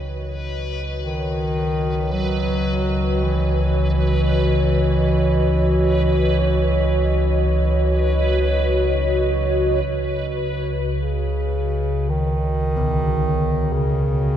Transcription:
Already playing: synth drone C#2 C#3, analog synth pad F#4 C#5 D#5, synth texture B4
1.01 bass clarinet D#3
2.12 bass clarinet F#3
3.23 bass clarinet E3
9.84 synth drone C#2 C#3
10.97 bass clarinet C#3
12.10 bass clarinet D#3
12.76 church bells B2
13.73 bass clarinet C#3

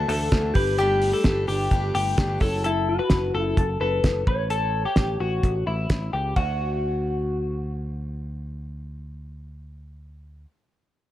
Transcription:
Already playing: steel-string acoustic guitar E3 A3 D4 F#4, clean electric guitar A4
0.08 picked electric bass D2, clean electric guitar A4, open hi-hat
0.31 picked electric bass D2, steel-string acoustic guitar E3 A3 D4 F#4, kick, snare, closed hi-hat
0.54 picked electric bass G1, steel-string acoustic guitar D4 G4 B4, clean electric guitar G4 B4, kick, open hi-hat
0.78 steel-string acoustic guitar G3 A3 D4 G4 B4, clean electric guitar G4, closed hi-hat
1.02 open hi-hat
1.13 clean electric guitar A4
1.24 picked electric bass G1, steel-string acoustic guitar A3 D4 G4 B4, kick, snare, closed hi-hat
1.47 picked electric bass G1, steel-string acoustic guitar D4 G4 B4, clean electric guitar G4, open hi-hat
1.71 picked electric bass G1, steel-string acoustic guitar A3 D4 G4 B4, kick, closed hi-hat
1.95 picked electric bass G1, clean electric guitar G4, open hi-hat
2.17 picked electric bass G1, steel-string acoustic guitar A3 D4 G4 B4, kick, snare, closed hi-hat
2.40 picked electric bass F#1, steel-string acoustic guitar E4 F#4 C#5, clean electric guitar A4, kick, open hi-hat
2.64 clean electric guitar E4 A4, closed hi-hat
2.89 clean electric guitar F#4
2.99 clean electric guitar B4
3.10 picked electric bass F#1, kick, snare, closed hi-hat
3.34 picked electric bass F#1, clean electric guitar A4
3.42 clean electric guitar E4
3.57 picked electric bass F#1, clean electric guitar A4, kick, closed hi-hat
3.80 picked electric bass F#1, clean electric guitar A4 B4
4.04 picked electric bass F#1, kick, snare, closed hi-hat
4.27 picked electric bass A1, clean electric guitar B4 C#5, kick
4.50 clean electric guitar A4, closed hi-hat
4.86 clean electric guitar G4
4.96 picked electric bass A1, kick, snare, closed hi-hat
5.20 picked electric bass A1, clean electric guitar F#4
5.43 picked electric bass A1, kick, closed hi-hat
5.67 picked electric bass A1, clean electric guitar E4
5.90 picked electric bass A1, kick, snare, closed hi-hat
6.13 picked electric bass C#2, clean electric guitar G4
6.36 picked electric bass D2, clean electric guitar F#4 F#5, kick, ride

